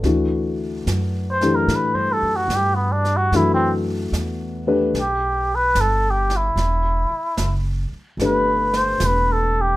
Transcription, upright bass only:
X:1
M:4/4
L:1/8
Q:"Swing" 1/4=74
K:G
V:1 name="Upright bass" clef=bass
D,,2 F,,2 (3A,, G,, F,, G,,2 | F,,2 E,,2 B,,,2 G,,,2 | E,,, z F,,, z G,,,2 E,,,2 |]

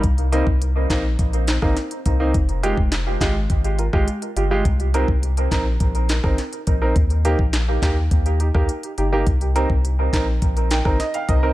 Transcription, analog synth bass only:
X:1
M:4/4
L:1/16
Q:1/4=104
K:Cphr
V:1 name="Analog synth bass" clef=bass
C,,3 C,,3 B,,,2 B,,,3 A,,, z2 C,,2 | F,,,3 F,,,3 A,,,2 A,,,3 A,,, z2 G,,,2 | C,,3 C,,3 B,,,2 B,,,3 A,,, z2 B,,,2 | E,,3 B,,,3 E,,2 E,,3 E,, z2 G,,,2 |
C,,3 C,,3 B,,,2 B,,,3 A,,, z2 C,,2 |]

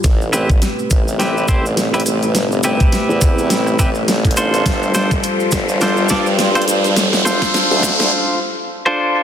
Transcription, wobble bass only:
X:1
M:4/4
L:1/16
Q:"Swing 16ths" 1/4=104
K:Am
V:1 name="Wobble bass" clef=bass
A,,,2 A,,, G,,, z2 A,,,4 A,,,4 A,,,2 | G,,,2 G,,, z2 E,,3 A,,,4 A,,,2 A,,,2 | G,,,2 G,,, F,,, z2 G,,,4 G,,4 G,,2 | F,,,2 F,,, z2 D,,3 z8 |]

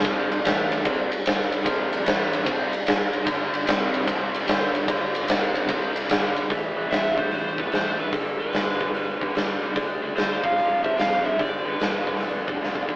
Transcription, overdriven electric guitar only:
X:1
M:4/4
L:1/8
Q:"Swing" 1/4=148
K:Am
V:1 name="Overdriven electric guitar" clef=bass
[F,,C,F,]2 [A,,E,A,]2 [C,G,C] z3 | [F,,C,F,]2 [A,,E,A,]2 [C,G,C] z3 | [G,,D,G,]2 [C,G,C]2 [C,G,C]2 [G,,D,G,]2 | [G,,D,G,]2 [C,G,C]2 [C,G,C]2 [G,,D,G,]2 |
[A,,E,A,] [A,,E,A,] [A,,E,A,] [A,,E,A,] [A,,E,A,] [A,,E,A,] [A,,E,A,] [A,,E,A,] | [G,,D,G,] [G,,D,G,] [G,,D,G,] [G,,D,G,] [G,,D,G,] [G,,D,G,] [G,,D,G,] [G,,D,G,] | [D,A,D] [D,A,D] [D,A,D] [F,,C,F,] [F,,C,F,] [F,,C,F,] [F,,C,F,] [F,,C,F,] | [G,,D,G,] [G,,D,G,] [G,,D,G,] [G,,D,G,] [D,A,D] [D,A,D] [D,A,D] [D,A,D] |]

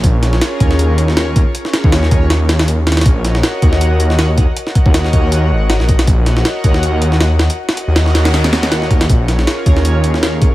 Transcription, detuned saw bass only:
X:1
M:4/4
L:1/16
Q:"Swing 16ths" 1/4=159
K:Ebdor
V:1 name="Detuned saw bass" clef=bass
B,,,4 z2 E,,8- E,, z | z3 E,,3 E,,8 E,,2 | B,,,4 z2 E,,8- E,, z | z3 E,,3 E,,4 A,,,3 B,,,3 |
B,,,4 z2 E,,8- E,, z | z3 E,,3 E,,8 E,,2 | B,,,4 z2 E,,8- E,, z |]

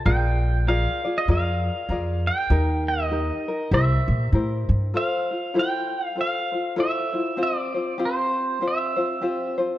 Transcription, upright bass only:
X:1
M:4/4
L:1/8
Q:"Swing" 1/4=98
K:Cm
V:1 name="Upright bass" clef=bass
B,,,4 F,,2 F,,2 | E,,4 C,, B,, =A,, G,, | [K:F] z8 | z8 |]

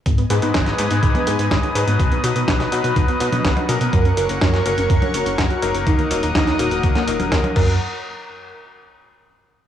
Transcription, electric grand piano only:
X:1
M:4/4
L:1/16
Q:1/4=124
K:G#dor
V:1 name="Electric grand piano"
z2 [G,,G,B,DB] [G,,G,B,DB]3 [G,,G,B,DB]4 [G,,G,B,DB]4 [B,,F,B,DB]2- | [B,,F,B,DB]2 [B,,F,B,DB] [B,,F,B,DB]3 [B,,F,B,DB]4 [B,,F,B,DB]4 [F,A,CA]2- | [F,A,CA]2 [F,A,CA] [F,A,CA]3 [F,A,CA]4 [F,A,CA]4 [F,A,DA]2- | [F,A,DA]2 [F,A,DA] [F,A,DA]3 [F,A,DA]4 [F,A,DA]4 [F,A,CA]2 |
z16 |]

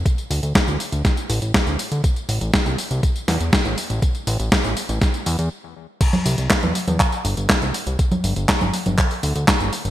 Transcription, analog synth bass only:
X:1
M:4/4
L:1/16
Q:1/4=121
K:Cmix
V:1 name="Analog synth bass" clef=bass
z2 D,, D,, z D,, z D,, z2 A,,, A,,, z D,, z D,, | z2 A,,, A,,, z C,, z C,, z2 E,, E,, z A,,, z A,,, | z2 A,,, A,,, z A,,, z A,,, z2 E,, E,, z4 | z2 C,, C,, z E,, z E,, z2 G,,, G,,, z C,, z C,, |
z2 G,,, G,,, z G,,, z G,,, z2 D,, D,, z G,,, z G,,, |]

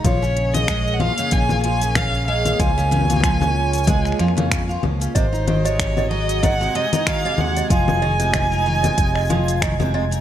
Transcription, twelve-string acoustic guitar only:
X:1
M:4/4
L:1/16
Q:"Swing 16ths" 1/4=94
K:Db
V:1 name="Twelve-string acoustic guitar" clef=bass
F, D,3 A,2 F, D, D, F F, D,3 A,2 | F, D, D, F F, D,3 A,2 F, D, D, F F, D, | C, E E, C,3 G,2 E, C, C, E E, C,3 | F,2 E, C, C, E E, C,3 F,2 E, C, C, E |]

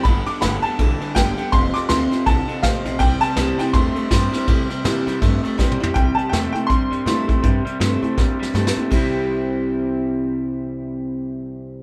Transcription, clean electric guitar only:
X:1
M:4/4
L:1/8
Q:"Swing" 1/4=162
K:C
V:1 name="Clean electric guitar" clef=bass
[G,,D,] [G,,D,] [G,,D,] [G,,D,] [G,,E,] [G,,E,] [G,,D,] [G,,D,] | [F,,C,] [F,,C,] [F,,C,] [F,,C,] [F,,D,] [F,,D,] [F,,C,] [F,,C,] | [C,G,] [C,G,] [C,G,] [C,G,] [C,A,] [C,A,] [C,G,] [C,G,] | G, [C,G,] [C,G,] [C,G,] [C,A,] [C,A,] [C,G,] [C,G,] |
[C,G,] [C,G,] [C,A,] [C,A,] [C,G,] [C,G,] [C,A,] [C,A,] | [C,G,] [C,G,] [C,A,] [C,A,] [C,G,] [C,G,] [C,A,] [C,A,] | [C,G,CE]8- | [C,G,CE]8 |]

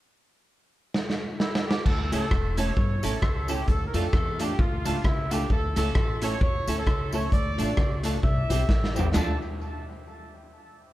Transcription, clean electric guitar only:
X:1
M:4/4
L:1/8
Q:"Swing" 1/4=132
K:Dm
V:1 name="Clean electric guitar"
z8 | z [A,^CEA] z [A,CEA] z [A,CEA] z [A,CEA] | z [A,DFA] z [A,DFA] z [A,DFA] z [A,DFA] | z [A,^CEA] z [A,CEA] z [A,CEA] z [A,CEA] |
z [A,DFA] z [A,DFA] z [G,CEG] z [G,CEG] | [F,A,DF] z6 z |]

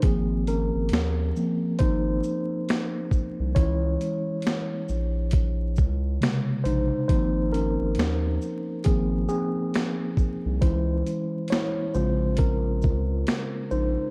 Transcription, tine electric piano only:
X:1
M:4/4
L:1/8
Q:"Swing 16ths" 1/4=68
K:Ab
V:1 name="Tine electric piano"
A [DB]2 z [Ec]4 | [_Fd]6- [Fd] [Ec] | [Ec] [DB]3 A [CA]3 | [_Fc]2 [Fd] [=Fc] [DB]3 [Ec] |]
V:2 name="Tine electric piano" clef=bass
[F,B,C]3 [F,B,C] z4 | [_F,A,D]3 z3 [C,D,A,]2 | [F,B,C] z3 [F,B,C] z3 | [_F,A,D]3 [D,A,C]4- [D,A,C] |]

